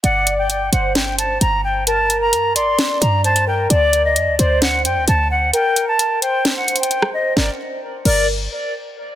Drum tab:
CC |------------------------------------------------|------------------------------------------------|------------------------------------------------|------------------------------------------------|
HH |x-----x-----x-----x-----x-----x-----x-----------|x-----x-----x-----x-----x-----x-----x--x--------|x-----x-----x-----x-----x-----x-----x-----------|x-----x-----x-----x-----x-----x-x-x-x-----------|
SD |------------------------o-----------------------|------------------------o-----------------------|------------------------o-----------------------|------------------------o--------------r--------|

CC |------------------x-----------------------------|
HH |------------------------------------------------|
SD |o-----------------------------------------------|